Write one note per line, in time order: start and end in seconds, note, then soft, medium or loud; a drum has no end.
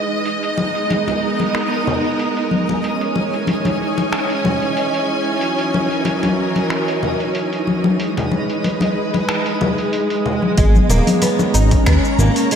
0.00 0.25 E3 medium
0.00 5.41 G#3 medium
0.00 10.60 D#4 medium
0.00 0.26 B4 medium
0.00 2.84 D#5 medium
0.00 10.59 D#6 medium
0.26 open hi-hat medium
0.42 3.87 B3 medium
0.42 2.84 D#4 medium
0.42 open hi-hat soft
0.58 muted conga medium
0.75 open hi-hat soft
0.90 3.88 A#4 medium
0.90 open hi-hat medium
0.90 muted conga medium
1.08 open hi-hat soft
1.08 muted conga medium
1.08 high conga medium
1.40 open hi-hat soft
1.40 muted conga medium
1.55 finger snap medium
1.55 open hi-hat medium
1.72 open hi-hat soft
1.87 low conga medium
2.04 open hi-hat soft
2.19 open hi-hat medium
2.37 open hi-hat soft
2.51 high conga medium
2.69 muted conga medium
2.69 high conga medium
2.84 open hi-hat medium
2.92 9.04 C#4 medium
3.01 open hi-hat soft
3.07 8.00 G#5 medium
3.12 6.46 C#5 medium
3.12 muted conga medium
3.27 10.58 E3 medium
3.33 open hi-hat soft
3.47 open hi-hat medium
3.47 muted conga medium
3.65 open hi-hat soft
3.65 muted conga medium
3.65 high conga medium
3.98 open hi-hat soft
3.98 muted conga soft
4.13 finger snap medium
4.13 open hi-hat medium
4.30 open hi-hat soft
4.44 muted conga medium
4.44 high conga soft
4.44 low conga medium
4.62 open hi-hat soft
4.77 open hi-hat medium
4.94 open hi-hat soft
5.41 8.00 F#3 medium
5.41 open hi-hat medium
5.58 open hi-hat soft
5.74 muted conga medium
5.83 8.00 A#4 medium
5.91 open hi-hat soft
6.05 open hi-hat medium
6.05 muted conga medium
6.23 open hi-hat soft
6.23 muted conga medium
6.23 high conga medium
6.56 open hi-hat soft
6.56 muted conga medium
6.70 finger snap medium
6.70 open hi-hat medium
6.88 open hi-hat soft
7.03 low conga medium
7.20 open hi-hat soft
7.35 open hi-hat medium
7.53 open hi-hat soft
7.67 high conga medium
7.84 muted conga medium
7.84 high conga medium
8.00 12.55 G#3 medium
8.00 open hi-hat medium
8.13 10.58 B4 medium
8.17 open hi-hat soft
8.17 low conga medium
8.32 muted conga medium
8.50 open hi-hat soft
8.64 open hi-hat medium
8.64 muted conga medium
8.80 open hi-hat soft
8.80 muted conga medium
8.80 high conga medium
9.14 open hi-hat soft
9.14 muted conga medium
9.29 finger snap medium
9.29 open hi-hat medium
9.46 open hi-hat soft
9.61 muted conga medium
9.61 high conga soft
9.61 low conga medium
9.78 open hi-hat soft
9.93 open hi-hat medium
10.10 open hi-hat soft
10.26 low conga medium
10.42 high conga medium
10.57 10.79 G#1 loud
10.57 10.74 G#3 medium
10.57 11.56 B3 loud
10.57 12.55 C#4 medium
10.57 12.55 C#5 medium
10.57 kick loud
10.57 open hi-hat medium
10.57 shaker soft
10.75 high conga medium
10.75 shaker soft
10.89 11.01 D#1 medium
10.89 11.07 A#3 loud
10.89 open hi-hat soft
10.89 muted conga medium
10.89 shaker medium
11.07 open hi-hat soft
11.07 high conga medium
11.07 shaker soft
11.19 11.53 B3 medium
11.19 12.55 A#5 medium
11.19 open hi-hat medium
11.19 muted conga medium
11.19 shaker soft
11.39 muted conga medium
11.39 shaker soft
11.54 11.76 G#1 medium
11.54 12.51 C#4 loud
11.54 11.85 D#4 medium
11.54 open hi-hat soft
11.54 shaker medium
11.71 kick loud
11.71 open hi-hat soft
11.71 muted conga medium
11.71 shaker soft
11.86 11.98 D#2 medium
11.86 12.03 B3 medium
11.86 finger snap medium
11.86 kick medium
11.86 open hi-hat soft
11.86 shaker soft
12.05 shaker soft
12.18 12.30 G#1 medium
12.18 12.50 A#3 medium
12.18 low conga medium
12.18 shaker medium
12.36 open hi-hat soft
12.36 shaker soft
12.51 12.55 G#3 medium
12.51 12.55 D#4 loud
12.51 open hi-hat medium
12.51 shaker soft